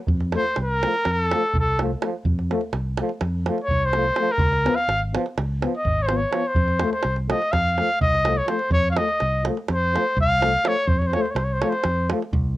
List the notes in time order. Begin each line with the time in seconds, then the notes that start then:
0.07 F2, davul low
0.20 davul high
0.32 F3 A3, davul high
0.37 C5
0.44 davul high
0.56 C2, davul high
0.62 A#4
0.83 F3 A3, davul high
0.94 davul high
1.05 F2, davul high
1.12 A4
1.31 F3 A3, davul high
1.43 davul high
1.53 C2, davul low
1.60 A4
1.79 F3 A3, davul high
2.01 F3 A3, davul high
2.25 F2, davul low
2.39 davul high
2.51 F3 A3, davul high
2.61 davul high
2.73 C2, davul high
2.97 F3 A3, davul high
3.09 davul high
3.21 F2, davul high
3.46 F3 A3, davul high
3.58 davul high
3.64 C#5
3.68 C2, davul low
3.85 C5
3.93 F3 A3, davul high
4.16 F3 A3, davul high
4.32 A#4
4.38 C#2, davul low
4.53 davul high
4.66 F3 B3, davul high
4.75 F5, davul high
4.88 G#1, davul high
5.14 F3 B3, davul high
5.26 davul high
5.38 C#2, davul high
5.62 F3 B3, davul high
5.77 D#5
5.85 G#1, davul low
6.02 C#5
6.06 F3 C5, davul high
6.11 B3
6.16 C#5
6.32 F3 B3, davul high
6.48 C5
6.55 F2, davul low
6.68 davul high
6.79 F3 A3, davul high
6.92 C5, davul high
7.03 C2, davul high
7.16 davul high
7.29 F3 A3 D#5, davul high
7.42 davul high
7.52 F2 F5, davul high, davul low
7.78 F3 A3, davul high
7.89 davul high
8.01 C2 D#5, davul low
8.15 davul high
8.25 F3 A3, davul high
8.38 C#5
8.46 F3 A3 C5, davul high
8.59 davul high
8.70 F2 C#5, davul low
8.91 F3 F5
8.97 A3 D#5, davul high
9.08 davul high
9.20 C2, davul high
9.44 F3, davul high
9.48 A3
9.57 davul high
9.68 F2, davul high
9.74 C5
9.94 F3 A3, davul high
10.17 C2, davul low
10.21 F5
10.41 F3 A3, davul high
10.65 F3 A3 C#5, davul high
10.88 F2 C5, davul low
10.99 C#5, davul high
11.07 C5
11.13 F3 A3 C#5, davul high
11.22 C5, davul high
11.30 C#5
11.35 C2 C5, davul high
11.44 C#5
11.53 C5
11.61 F3 A3 C#5, davul high
11.70 C5, davul high
11.84 F2, davul high
12.10 F3 A3, davul high
12.22 davul high
12.33 C2, davul low